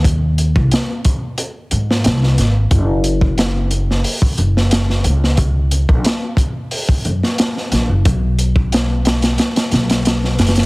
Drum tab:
HH |x---x---x---x---x---x---x---x---|x---x---x---x---o---x---x---x---|x---x---x---x---o---x---x---x---|x---x---x---x-x-x-x-x-x-x---xxx-|
SD |--------o-------------o-o-o-o---|--------o-----o-------o-o-o---o-|--------o-------------o-o-o-o---|--------o---o-o-o-o-o-o-o-o-ooo-|
BD |o-----o-----o-------------------|o-----o-----------o-------------|o-----o-----o-----o-------------|o-----o-------------------------|